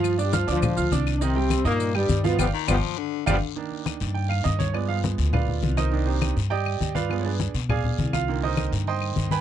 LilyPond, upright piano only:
<<
  \new Staff \with { instrumentName = "Upright piano" } { \time 4/4 \key c \minor \tempo 4 = 204 <f f' f''>8 <d' d'' d'''>8 <f' f'' f'''>8 <d' d'' d'''>4 <f' f'' f'''>8 <d' d'' d'''>4 | <ees ees' ees''>8 <g g' g''>4 <ees' ees'' ees'''>4 <g g' g''>4 <f f' f''>8 | <d'' f'' g''>8 r8 <d'' f'' g''>8 r4. <d'' f'' g''>8 r8 | r2 g''8 f''8 ees''8 des''8 |
<des'' d''>8 f''8 r4 <f' b' d'' f''>4. <ees' bes' c'' ees''>8~ | <ees' bes' c'' ees''>8 <c' ees' g' c''>4 r8 <g' d'' ees'' g''>4. <f' b' d'' f''>8~ | <f' b' d'' f''>8 <d' aes' b' des'' d''>4 r8 <aes' d'' f'' aes''>4. <f' f''>8~ | <f' f''>8 <ees' bes' c'' ees''>4 r8 <c'' ees'' g'' c'''>4. <b' g'' aes'' b''>8 | }
  \new Staff \with { instrumentName = "Upright piano" } { \clef bass \time 4/4 \key c \minor r1 | r1 | r1 | <ees bes d'>1 |
<f aes b>1 | <ees bes d'>4. r2 r8 | <f aes b>8 r2. r8 | <d ees bes>1 | }
>>